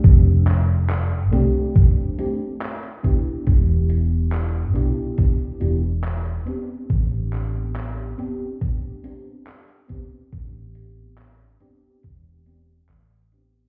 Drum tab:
HH |x-x-x-x-x-x-xxx-|x-x-x-x-x-x-xxx-|x-x-x-x-x-x-xxx-|x-x-x-x-x-x-xxx-|
CP |--x-x-------x---|----x-------x---|--x-x-------x---|----x-------x---|
BD |o-------o-----o-|o-------o-------|o-------o-----o-|o-------o-------|